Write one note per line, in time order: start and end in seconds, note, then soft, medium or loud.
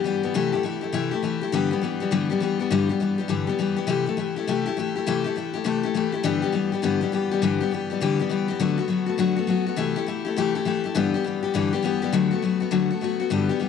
0.04 0.23 E3 medium
0.04 0.24 G3 medium
0.04 0.23 B3 medium
0.04 0.22 G4 medium
0.23 0.34 E3 soft
0.23 0.35 G3 medium
0.23 0.35 B3 medium
0.23 0.34 G4 medium
0.34 0.53 C3 medium
0.34 0.53 E3 loud
0.34 0.54 A3 loud
0.34 0.53 E4 medium
0.34 0.51 G4 loud
0.52 0.63 A3 medium
0.52 0.64 E4 medium
0.52 0.64 G4 medium
0.63 0.82 E3 medium
0.63 0.83 A3 medium
0.63 0.81 E4 medium
0.63 0.80 G4 medium
0.81 0.93 A3 medium
0.81 0.93 E4 medium
0.81 0.93 G4 medium
0.93 1.12 C3 medium
0.93 1.12 E3 medium
0.93 1.12 A3 medium
0.93 1.12 E4 medium
0.93 1.10 G4 medium
1.11 1.23 A3 medium
1.11 1.23 E4 medium
1.11 1.22 G4 medium
1.23 1.42 E3 medium
1.23 1.42 A3 medium
1.23 1.42 E4 medium
1.23 1.40 G4 medium
1.41 1.53 A3 soft
1.41 1.53 E4 medium
1.41 1.52 G4 medium
1.52 1.71 G2 medium
1.52 1.71 D3 medium
1.52 1.72 E3 medium
1.52 1.72 G3 loud
1.52 1.71 B3 loud
1.52 1.70 G4 loud
1.71 1.80 E3 medium
1.71 1.82 G3 medium
1.71 1.82 B3 medium
1.71 1.82 G4 medium
1.82 2.01 E3 medium
1.82 2.01 G3 medium
1.82 2.00 B3 medium
1.82 1.99 G4 medium
2.00 2.10 E3 medium
2.00 2.11 G3 medium
2.00 2.11 B3 medium
2.00 2.11 G4 medium
2.11 2.30 G2 medium
2.11 2.30 D3 medium
2.11 2.30 E3 medium
2.11 2.31 G3 loud
2.11 2.30 B3 medium
2.11 2.28 G4 medium
2.30 2.39 E3 medium
2.30 2.41 G3 medium
2.30 2.41 B3 medium
2.30 2.41 G4 medium
2.40 2.59 E3 medium
2.40 2.60 G3 medium
2.40 2.59 B3 medium
2.40 2.58 G4 medium
2.59 2.70 E3 medium
2.59 2.71 G3 medium
2.59 2.71 B3 medium
2.59 2.70 G4 medium
2.70 2.89 G2 medium
2.70 2.89 D3 loud
2.70 2.90 E3 loud
2.70 2.90 G3 loud
2.70 2.89 B3 loud
2.70 2.88 G4 loud
2.89 2.99 E3 medium
2.89 3.00 G3 medium
2.89 3.00 B3 medium
2.89 3.00 G4 medium
3.00 3.19 E3 medium
3.00 3.19 G3 medium
3.00 3.18 B3 medium
3.00 3.17 G4 medium
3.18 3.28 E3 soft
3.18 3.28 G3 medium
3.18 3.29 B3 medium
3.18 3.29 G4 medium
3.28 3.48 G2 medium
3.28 3.48 D3 medium
3.28 3.48 E3 medium
3.28 3.48 G3 medium
3.28 3.47 B3 medium
3.28 3.46 G4 medium
3.47 3.57 E3 medium
3.47 3.58 G3 medium
3.47 3.59 B3 medium
3.47 3.58 G4 medium
3.59 3.78 E3 medium
3.59 3.77 G3 medium
3.59 3.76 B3 medium
3.59 3.75 G4 medium
3.76 3.86 E3 soft
3.76 3.88 G3 medium
3.76 3.88 B3 medium
3.76 3.88 G4 medium
3.87 4.06 C3 medium
3.87 4.07 E3 loud
3.87 4.07 A3 medium
3.87 4.06 E4 medium
3.87 4.05 G4 loud
4.06 4.17 A3 medium
4.06 4.18 E4 medium
4.06 4.18 G4 medium
4.17 4.36 E3 medium
4.17 4.37 A3 medium
4.17 4.36 E4 medium
4.17 4.35 G4 medium
4.36 4.47 A3 soft
4.36 4.48 E4 soft
4.36 4.47 G4 medium
4.47 4.66 C3 medium
4.47 4.67 E3 medium
4.47 4.67 A3 medium
4.47 4.66 E4 medium
4.47 4.64 G4 medium
4.66 4.77 A3 soft
4.66 4.78 E4 medium
4.66 4.77 G4 medium
4.77 4.96 E3 medium
4.77 4.96 A3 medium
4.77 4.96 E4 medium
4.77 4.94 G4 medium
4.96 5.06 A3 soft
4.96 5.06 E4 medium
4.96 5.06 G4 medium
5.06 5.25 C3 medium
5.06 5.26 E3 medium
5.06 5.26 A3 loud
5.06 5.25 E4 medium
5.06 5.23 G4 loud
5.24 5.35 A3 medium
5.24 5.36 E4 medium
5.24 5.36 G4 medium
5.36 5.55 E3 medium
5.36 5.55 A3 medium
5.36 5.54 E4 medium
5.36 5.52 G4 medium
5.54 5.64 A3 medium
5.54 5.65 E4 medium
5.54 5.65 G4 medium
5.64 5.84 C3 medium
5.64 5.84 E3 medium
5.64 5.84 A3 medium
5.64 5.83 E4 medium
5.64 5.82 G4 medium
5.83 5.94 A3 medium
5.83 5.95 E4 medium
5.83 5.95 G4 medium
5.94 6.13 E3 medium
5.94 6.14 A3 medium
5.94 6.12 E4 medium
5.94 6.11 G4 medium
6.12 6.24 A3 soft
6.12 6.25 E4 medium
6.12 6.24 G4 medium
6.23 6.43 G2 medium
6.23 6.43 D3 loud
6.23 6.43 E3 loud
6.23 6.43 G3 loud
6.23 6.42 B3 loud
6.23 6.41 G4 loud
6.42 6.51 E3 medium
6.42 6.52 G3 medium
6.42 6.53 B3 medium
6.42 6.53 G4 medium
6.52 6.72 E3 medium
6.52 6.72 G3 medium
6.52 6.72 B3 medium
6.52 6.71 G4 medium
6.72 6.82 E3 soft
6.72 6.82 G3 soft
6.72 6.83 B3 medium
6.72 6.83 G4 medium
6.82 7.01 G2 medium
6.82 7.02 D3 medium
6.82 7.02 E3 medium
6.82 7.01 G3 medium
6.82 7.01 B3 medium
6.82 7.00 G4 loud
7.01 7.11 E3 soft
7.01 7.12 G3 medium
7.01 7.12 B3 medium
7.01 7.12 G4 medium
7.12 7.31 E3 medium
7.12 7.32 G3 medium
7.12 7.31 B3 medium
7.12 7.30 G4 medium
7.31 7.42 E3 soft
7.31 7.42 G3 medium
7.31 7.42 B3 medium
7.31 7.42 G4 medium
7.42 7.61 G2 medium
7.42 7.61 D3 loud
7.42 7.61 E3 loud
7.42 7.61 G3 loud
7.42 7.61 B3 medium
7.42 7.59 G4 loud
7.60 7.70 E3 medium
7.60 7.71 G3 medium
7.60 7.72 B3 medium
7.60 7.72 G4 medium
7.71 7.90 E3 medium
7.71 7.91 G3 medium
7.71 7.90 B3 medium
7.71 7.89 G4 medium
7.90 8.00 E3 soft
7.90 8.01 G3 medium
7.90 8.01 B3 medium
7.90 8.01 G4 medium
8.01 8.20 G2 medium
8.01 8.20 D3 medium
8.01 8.20 E3 medium
8.01 8.20 G3 loud
8.01 8.19 B3 medium
8.01 8.18 G4 medium
8.19 8.28 E3 soft
8.19 8.29 G3 medium
8.19 8.30 B3 medium
8.19 8.30 G4 medium
8.29 8.49 E3 medium
8.29 8.49 G3 medium
8.29 8.48 B3 medium
8.29 8.47 G4 medium
8.48 8.59 E3 soft
8.48 8.60 G3 medium
8.48 8.60 B3 medium
8.48 8.60 G4 medium
8.60 8.79 D3 medium
8.60 8.79 F#3 medium
8.60 8.79 A3 loud
8.60 8.78 B3 loud
8.60 8.76 F#4 medium
8.78 8.88 A3 soft
8.78 8.89 B3 medium
8.78 8.89 F#4 medium
8.88 9.07 F#3 medium
8.88 9.08 A3 medium
8.88 9.06 B3 medium
8.88 9.05 F#4 medium
9.06 9.17 A3 soft
9.06 9.18 B3 soft
9.06 9.18 F#4 medium
9.18 9.37 D3 medium
9.18 9.37 F#3 medium
9.18 9.38 A3 medium
9.18 9.37 B3 medium
9.18 9.35 F#4 loud
9.36 9.47 A3 medium
9.36 9.48 B3 medium
9.36 9.48 F#4 medium
9.47 9.66 F#3 medium
9.47 9.67 A3 medium
9.47 9.67 B3 medium
9.47 9.65 F#4 medium
9.66 9.76 A3 medium
9.66 9.78 B3 medium
9.66 9.78 F#4 medium
9.76 9.96 C3 medium
9.76 9.96 E3 loud
9.76 9.96 A3 loud
9.76 9.96 E4 medium
9.76 9.95 G4 medium
9.96 10.06 A3 medium
9.96 10.07 E4 medium
9.96 10.07 G4 medium
10.06 10.26 E3 medium
10.06 10.26 A3 medium
10.06 10.25 E4 medium
10.06 10.23 G4 medium
10.25 10.37 A3 soft
10.25 10.37 E4 medium
10.25 10.36 G4 medium
10.36 10.55 C3 medium
10.36 10.56 E3 medium
10.36 10.56 A3 medium
10.36 10.55 E4 medium
10.36 10.54 G4 loud
10.55 10.65 A3 medium
10.55 10.66 E4 medium
10.55 10.66 G4 medium
10.65 10.84 E3 medium
10.65 10.85 A3 medium
10.65 10.85 E4 medium
10.65 10.82 G4 medium
10.84 10.95 A3 medium
10.84 10.96 E4 medium
10.84 10.95 G4 medium
10.95 11.14 G2 loud
10.95 11.14 D3 medium
10.95 11.14 E3 loud
10.95 11.14 G3 medium
10.95 11.14 B3 loud
10.95 11.13 G4 loud
11.14 11.23 E3 medium
11.14 11.24 G3 medium
11.14 11.25 B3 medium
11.14 11.25 G4 medium
11.24 11.43 E3 medium
11.24 11.43 G3 medium
11.24 11.42 B3 medium
11.24 11.41 G4 medium
11.43 11.54 E3 soft
11.43 11.54 G3 soft
11.43 11.54 B3 medium
11.43 11.54 G4 medium
11.54 11.73 G2 medium
11.54 11.73 D3 medium
11.54 11.73 E3 loud
11.54 11.73 G3 medium
11.54 11.72 B3 medium
11.54 11.71 G4 medium
11.73 11.81 E3 medium
11.73 11.83 G3 medium
11.73 11.83 B3 medium
11.73 11.84 G4 medium
11.82 12.02 E3 medium
11.82 12.02 G3 medium
11.82 12.02 B3 medium
11.82 12.01 G4 medium
12.02 12.13 E3 medium
12.02 12.13 G3 medium
12.02 12.13 B3 medium
12.02 12.13 G4 medium
12.12 12.32 D3 medium
12.12 12.32 F#3 loud
12.12 12.32 A3 medium
12.12 12.31 B3 loud
12.12 12.30 F#4 loud
12.31 12.42 A3 medium
12.31 12.43 B3 medium
12.31 12.42 F#4 medium
12.42 12.61 F#3 medium
12.42 12.62 A3 medium
12.42 12.61 B3 medium
12.42 12.59 F#4 medium
12.60 12.71 A3 soft
12.60 12.71 B3 medium
12.60 12.72 F#4 medium
12.71 12.90 D3 medium
12.71 12.90 F#3 medium
12.71 12.91 A3 medium
12.71 12.91 B3 medium
12.71 12.89 F#4 loud
12.91 13.01 A3 medium
12.91 13.02 B3 medium
12.91 13.02 F#4 medium
13.01 13.20 F#3 medium
13.01 13.21 A3 medium
13.01 13.20 B3 medium
13.01 13.19 F#4 medium
13.20 13.31 A3 soft
13.20 13.31 B3 medium
13.20 13.31 F#4 medium
13.30 13.49 G2 loud
13.30 13.50 D3 medium
13.30 13.50 E3 medium
13.30 13.50 G3 medium
13.30 13.49 B3 loud
13.30 13.48 G4 loud
13.49 13.58 E3 medium
13.49 13.59 G3 medium
13.49 13.60 B3 medium
13.49 13.60 G4 medium
13.59 13.69 E3 medium
13.59 13.69 G3 medium
13.59 13.69 B3 medium
13.59 13.69 G4 medium